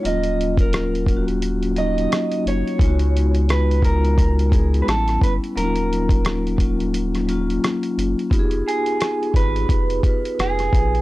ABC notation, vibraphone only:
X:1
M:4/4
L:1/16
Q:"Swing 16ths" 1/4=87
K:Ebm
V:1 name="Vibraphone"
[G,B,DF]4 z2 [G,B,DFG]3 z [G,B,DE]4 z2 | [A,CEFG]4 z2 [A,CEF] [A,CEG]2 z [A,CEA]2 [=G,=B,^C=E]3 z | [G,B,DEF]4 z2 [G,B,DF]3 z [G,B,DF]4 z2 | [CEF=GA]4 z2 [CEFc] [CEFc]2 z [CEFc]4 z2 |]